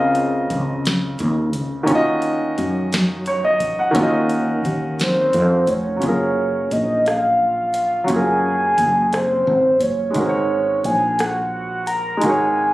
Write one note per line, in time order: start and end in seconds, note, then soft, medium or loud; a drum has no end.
0.00 0.46 C#2 loud
0.00 1.82 C#3 medium
0.00 1.83 C4 medium
0.00 1.85 F4 medium
0.00 1.86 A#4 medium
0.00 1.88 D#5 medium
0.00 0.59 F5 medium
0.15 closed hi-hat medium
0.50 1.15 C#2 medium
0.50 kick medium
0.50 closed hi-hat soft
0.85 snare loud
0.85 closed hi-hat medium
1.19 1.55 D#2 medium
1.19 closed hi-hat soft
1.53 1.89 C#2 medium
1.53 closed hi-hat medium
1.83 3.88 D#3 medium
1.83 3.90 C#4 medium
1.87 2.53 D#2 loud
1.87 3.91 F4 medium
1.87 kick loud
1.87 closed hi-hat medium
1.92 3.93 F#4 medium
1.92 3.27 D#5 medium
2.22 closed hi-hat medium
2.58 3.91 F#2 medium
2.58 closed hi-hat soft
2.93 snare loud
2.93 closed hi-hat medium
3.26 3.43 C#5 medium
3.26 closed hi-hat medium
3.45 3.77 D#5 medium
3.60 kick medium
3.60 closed hi-hat medium
3.79 4.11 F#5 medium
3.91 5.96 D#3 medium
3.91 5.97 C#4 medium
3.91 closed hi-hat medium
3.95 4.60 D#2 loud
3.95 5.99 F4 medium
3.95 kick loud
4.00 6.00 F#4 medium
4.00 6.02 D#5 medium
4.29 closed hi-hat medium
4.65 5.29 D#2 medium
4.65 kick medium
4.65 closed hi-hat medium
5.00 5.71 C5 medium
5.00 snare loud
5.00 closed hi-hat medium
5.33 5.64 F2 medium
5.33 closed hi-hat medium
5.67 5.98 F1 medium
5.67 6.74 C#5 medium
5.67 kick medium
5.67 closed hi-hat medium
5.96 8.02 F#3 medium
5.96 8.03 C#4 soft
6.02 6.67 F#1 medium
6.02 8.05 F4 medium
6.02 kick loud
6.02 closed hi-hat medium
6.06 8.07 G#4 medium
6.06 8.08 A#4 medium
6.71 8.05 A#1 medium
6.71 7.08 D#5 medium
6.71 kick medium
6.71 closed hi-hat medium
7.06 8.11 F5 medium
7.06 cross-stick medium
7.06 closed hi-hat medium
7.74 closed hi-hat medium
8.04 10.09 F#3 medium
8.04 10.11 C#4 medium
8.04 closed hi-hat medium
8.10 8.74 F#1 medium
8.10 10.12 F4 medium
8.10 10.14 G#4 medium
8.10 9.15 G#5 loud
8.16 10.15 A#4 medium
8.78 9.43 F#1 medium
8.78 kick medium
8.78 closed hi-hat medium
9.13 9.83 C5 medium
9.13 cross-stick medium
9.13 closed hi-hat medium
9.47 9.81 G#1 medium
9.80 10.12 F#1 medium
9.80 10.87 C#5 loud
9.80 kick medium
9.80 closed hi-hat medium
10.10 12.16 G#3 medium
10.10 12.17 D#4 medium
10.10 closed hi-hat medium
10.15 10.80 G#1 medium
10.15 12.19 F#4 medium
10.15 kick loud
10.19 12.20 A#4 medium
10.19 10.25 C5 medium
10.29 12.25 C#5 medium
10.84 12.18 A#1 medium
10.84 11.22 G#5 loud
10.84 kick medium
10.84 closed hi-hat medium
11.19 11.52 F#5 medium
11.19 cross-stick loud
11.19 closed hi-hat medium
11.53 11.88 F#5 medium
11.87 12.24 A#5 loud
11.87 closed hi-hat medium
12.17 12.74 G#3 medium
12.17 12.74 D#4 medium
12.21 12.74 G#1 medium
12.21 12.74 F#4 medium
12.21 12.74 G#5 loud
12.21 closed hi-hat medium
12.26 12.74 A#4 medium
12.26 12.74 C#5 medium